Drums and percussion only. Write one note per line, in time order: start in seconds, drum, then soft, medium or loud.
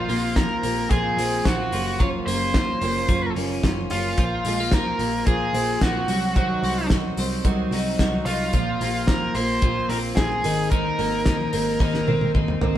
0.09 open hi-hat medium
0.36 kick loud
0.36 snare loud
0.36 closed hi-hat medium
0.63 open hi-hat medium
0.91 kick loud
0.91 closed hi-hat medium
1.19 open hi-hat medium
1.45 kick medium
1.45 snare loud
1.45 closed hi-hat medium
1.72 open hi-hat medium
2.00 kick loud
2.00 closed hi-hat medium
2.28 open hi-hat medium
2.54 kick loud
2.54 snare loud
2.54 closed hi-hat medium
2.81 open hi-hat medium
3.09 kick loud
3.09 closed hi-hat medium
3.36 open hi-hat medium
3.63 kick medium
3.63 snare loud
3.63 closed hi-hat medium
3.90 open hi-hat medium
4.17 kick loud
4.17 closed hi-hat medium
4.45 open hi-hat medium
4.71 kick loud
4.71 snare loud
4.71 closed hi-hat medium
4.99 open hi-hat medium
5.27 kick loud
5.27 closed hi-hat medium
5.54 open hi-hat medium
5.81 kick medium
5.81 snare loud
5.81 closed hi-hat medium
6.08 open hi-hat medium
6.36 kick loud
6.36 closed hi-hat medium
6.64 open hi-hat medium
6.90 kick loud
6.90 snare loud
6.90 closed hi-hat medium
7.17 open hi-hat medium
7.45 kick loud
7.45 closed hi-hat medium
7.72 open hi-hat medium
7.99 kick medium
7.99 snare loud
7.99 closed hi-hat medium
8.26 open hi-hat medium
8.53 kick loud
8.53 closed hi-hat medium
8.81 open hi-hat medium
9.07 kick loud
9.07 snare loud
9.07 closed hi-hat medium
9.35 open hi-hat medium
9.62 kick loud
9.62 closed hi-hat medium
9.90 open hi-hat medium
10.17 kick medium
10.17 snare loud
10.17 closed hi-hat medium
10.44 open hi-hat medium
10.72 kick loud
10.72 closed hi-hat medium
10.99 open hi-hat medium
11.26 kick loud
11.26 snare loud
11.26 closed hi-hat medium
11.53 open hi-hat medium
11.80 kick loud
11.80 snare medium
11.94 snare soft
12.08 high tom medium
12.21 high tom medium
12.35 kick loud
12.35 mid tom medium
12.48 mid tom medium
12.61 floor tom medium